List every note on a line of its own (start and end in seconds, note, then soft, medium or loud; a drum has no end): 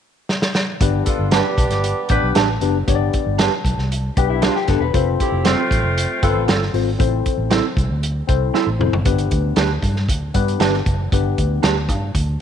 0.29 snare medium
0.42 snare medium
0.55 snare medium
0.81 1.02 G1 loud
0.81 1.40 B3 medium
0.81 1.40 D4 medium
0.81 1.40 G4 medium
0.81 1.41 B4 medium
0.81 kick loud
0.81 closed hi-hat medium
1.06 1.27 D4 medium
1.06 1.27 F4 medium
1.06 1.27 A4 medium
1.06 kick medium
1.06 closed hi-hat medium
1.19 1.40 G1 medium
1.31 2.06 B3 medium
1.31 2.06 D4 loud
1.31 1.44 D4 medium
1.31 2.06 G4 loud
1.31 1.44 G4 medium
1.31 1.45 B4 medium
1.31 snare loud
1.31 closed hi-hat medium
1.58 1.71 B1 medium
1.58 kick medium
1.58 closed hi-hat medium
1.70 1.92 G1 medium
1.70 snare soft
1.70 closed hi-hat soft
1.84 closed hi-hat medium
2.09 2.20 A1 medium
2.09 2.39 B3 medium
2.09 2.31 D4 medium
2.09 2.40 D4 medium
2.09 2.31 G4 medium
2.09 2.40 G4 medium
2.09 2.31 B4 medium
2.09 2.40 B4 medium
2.09 kick medium
2.09 closed hi-hat medium
2.23 2.33 B1 medium
2.35 2.57 A1 medium
2.35 2.47 D4 medium
2.35 2.48 G4 medium
2.35 2.48 B4 medium
2.35 snare loud
2.35 closed hi-hat medium
2.61 2.82 F#1 medium
2.61 2.76 B3 medium
2.61 2.76 D4 medium
2.61 2.77 G4 medium
2.61 2.77 B4 medium
2.61 closed hi-hat medium
2.87 3.08 G1 medium
2.87 3.47 B3 medium
2.87 3.47 D4 medium
2.87 3.47 G4 medium
2.87 2.94 C#5 medium
2.87 kick loud
2.87 closed hi-hat medium
2.95 3.50 D5 medium
3.13 kick medium
3.13 closed hi-hat medium
3.26 3.47 G1 medium
3.39 3.51 D4 medium
3.39 3.51 G4 medium
3.39 3.52 B4 medium
3.39 snare loud
3.39 closed hi-hat medium
3.64 3.75 B1 medium
3.64 kick medium
3.64 closed hi-hat medium
3.77 4.09 C2 medium
3.77 snare soft
3.92 closed hi-hat medium
4.17 4.48 B1 medium
4.17 4.46 B3 medium
4.17 4.47 D4 medium
4.17 4.47 G4 medium
4.17 4.29 G4 medium
4.17 4.47 B4 medium
4.17 kick medium
4.17 closed hi-hat medium
4.30 4.42 E4 medium
4.42 4.54 D4 medium
4.42 4.55 F4 medium
4.42 4.54 G4 medium
4.42 4.55 B4 medium
4.42 snare loud
4.42 closed hi-hat medium
4.56 4.68 G4 medium
4.56 snare soft
4.68 4.79 G1 medium
4.68 4.83 B3 medium
4.68 4.83 D4 medium
4.68 4.83 G4 medium
4.68 4.80 A4 medium
4.68 4.83 B4 medium
4.68 kick medium
4.68 snare soft
4.68 closed hi-hat medium
4.81 4.91 E1 medium
4.81 5.05 B4 medium
4.93 5.15 F1 loud
4.93 5.53 C4 medium
4.93 5.53 F4 medium
4.93 5.53 A4 medium
4.93 5.53 C5 medium
4.93 kick loud
4.93 closed hi-hat medium
5.20 5.41 C4 medium
5.20 5.41 E4 medium
5.20 5.41 G4 medium
5.20 kick medium
5.20 closed hi-hat medium
5.32 5.53 F1 medium
5.45 6.19 A3 medium
5.45 5.57 C4 medium
5.45 6.19 C4 loud
5.45 5.57 F4 medium
5.45 6.19 F4 loud
5.45 5.58 A4 medium
5.45 snare loud
5.45 closed hi-hat medium
5.71 5.81 A1 medium
5.71 kick medium
5.71 closed hi-hat medium
5.84 6.05 F1 medium
5.98 closed hi-hat medium
6.22 6.33 G1 medium
6.22 6.43 C4 medium
6.22 6.52 C4 medium
6.22 6.43 F4 medium
6.22 6.52 F4 medium
6.22 6.44 A4 medium
6.22 6.53 A4 medium
6.22 6.53 B4 medium
6.22 kick loud
6.22 closed hi-hat medium
6.35 6.46 A1 medium
6.48 6.70 G1 medium
6.48 6.60 C4 medium
6.48 6.61 F4 medium
6.48 6.61 A4 medium
6.48 snare loud
6.48 closed hi-hat medium
6.63 snare soft
6.74 6.95 G#1 medium
6.74 6.89 C4 medium
6.74 6.89 F4 medium
6.74 6.89 A4 medium
6.74 6.89 C5 medium
6.74 open hi-hat soft
6.99 7.21 A1 loud
6.99 7.58 C4 medium
6.99 7.58 E4 medium
6.99 7.59 A4 medium
6.99 7.59 C5 medium
6.99 kick loud
6.99 closed hi-hat medium
7.26 kick medium
7.26 closed hi-hat medium
7.38 7.59 A1 medium
7.51 7.63 C4 medium
7.51 7.63 E4 medium
7.51 7.64 A4 medium
7.51 snare loud
7.51 closed hi-hat medium
7.77 7.87 C2 medium
7.77 kick medium
7.77 closed hi-hat medium
7.89 8.21 D2 medium
8.03 closed hi-hat medium
8.27 8.50 C2 medium
8.27 8.58 C4 medium
8.27 8.58 E4 medium
8.27 8.58 A4 medium
8.27 8.58 C5 medium
8.27 kick medium
8.27 closed hi-hat medium
8.54 8.66 C4 medium
8.54 8.66 E4 medium
8.54 8.67 A4 medium
8.54 snare medium
8.67 8.77 A1 medium
8.79 8.90 F1 medium
8.79 8.94 C4 medium
8.79 8.95 E4 medium
8.79 8.95 A4 medium
8.79 8.95 C5 medium
8.79 mid tom medium
8.92 9.03 F#1 medium
8.92 floor tom medium
9.05 9.27 G1 medium
9.05 9.64 B3 medium
9.05 9.65 D4 medium
9.05 9.65 G4 medium
9.05 9.65 B4 medium
9.05 kick loud
9.05 closed hi-hat medium
9.18 closed hi-hat medium
9.31 9.52 D2 medium
9.31 kick medium
9.31 closed hi-hat medium
9.56 9.78 D2 medium
9.56 9.69 D4 medium
9.56 9.69 G4 medium
9.56 9.70 B4 medium
9.56 snare loud
9.56 closed hi-hat medium
9.82 10.09 G2 medium
9.82 kick medium
9.82 closed hi-hat medium
9.96 snare soft
10.09 10.30 D2 medium
10.09 kick medium
10.09 closed hi-hat medium
10.34 10.56 G2 medium
10.34 10.78 B3 medium
10.34 10.79 D4 medium
10.34 10.79 G4 medium
10.34 10.79 B4 medium
10.34 kick medium
10.34 closed hi-hat medium
10.48 closed hi-hat soft
10.60 10.81 G1 medium
10.60 10.72 D4 medium
10.60 10.72 G4 medium
10.60 10.73 B4 medium
10.60 snare medium
10.60 closed hi-hat medium
10.74 snare soft
10.86 11.07 F#1 medium
10.86 kick medium
10.86 closed hi-hat soft
11.12 11.33 G1 loud
11.12 11.71 B3 medium
11.12 11.71 D4 medium
11.12 11.71 G4 medium
11.12 11.72 B4 medium
11.12 kick loud
11.12 closed hi-hat medium
11.38 11.59 D2 medium
11.38 kick medium
11.38 closed hi-hat medium
11.63 11.89 D2 medium
11.63 11.75 D4 medium
11.63 11.75 G4 medium
11.63 11.76 B4 medium
11.63 snare loud
11.63 closed hi-hat medium
11.89 12.10 G2 medium
11.89 kick medium
11.89 closed hi-hat medium
12.15 12.36 D2 loud
12.15 kick medium
12.15 closed hi-hat medium